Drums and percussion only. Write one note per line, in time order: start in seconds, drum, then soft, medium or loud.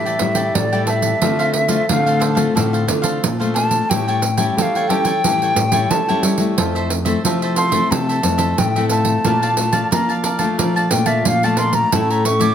0.06 pandeiro soft
0.19 pandeiro medium
0.35 pandeiro medium
0.55 pandeiro medium
0.73 pandeiro soft
0.87 pandeiro medium
1.02 pandeiro medium
1.22 pandeiro medium
1.40 pandeiro soft
1.54 pandeiro medium
1.68 pandeiro medium
1.89 pandeiro medium
2.07 pandeiro soft
2.22 pandeiro medium
2.37 pandeiro medium
2.57 pandeiro medium
2.74 pandeiro soft
2.88 pandeiro medium
3.04 pandeiro medium
3.24 pandeiro medium
3.41 pandeiro soft
3.56 pandeiro medium
3.71 pandeiro medium
3.91 pandeiro medium
4.08 pandeiro soft
4.22 pandeiro medium
4.38 pandeiro medium
4.58 pandeiro medium
4.75 pandeiro soft
4.90 pandeiro medium
5.05 pandeiro medium
5.24 pandeiro medium
5.42 pandeiro soft
5.56 pandeiro medium
5.72 pandeiro medium
5.91 pandeiro medium
6.09 pandeiro soft
6.23 pandeiro medium
6.38 pandeiro medium
6.58 pandeiro medium
6.76 pandeiro soft
6.90 pandeiro medium
7.06 pandeiro medium
7.25 pandeiro medium
7.42 pandeiro soft
7.56 pandeiro medium
7.72 pandeiro medium
7.92 pandeiro medium
8.09 pandeiro soft
8.23 pandeiro medium
8.38 pandeiro medium
8.58 pandeiro medium
8.76 pandeiro soft
8.89 pandeiro medium
9.05 pandeiro medium
9.25 pandeiro medium
9.43 pandeiro soft
9.57 pandeiro medium
9.73 pandeiro medium
9.92 pandeiro medium
10.10 pandeiro soft
10.24 pandeiro medium
10.39 pandeiro medium
10.59 pandeiro medium
10.77 pandeiro soft
10.91 pandeiro medium
11.06 pandeiro medium
11.25 pandeiro medium
11.43 pandeiro soft
11.57 pandeiro medium
11.73 pandeiro medium
11.92 pandeiro medium
12.10 pandeiro soft
12.25 pandeiro medium
12.41 pandeiro medium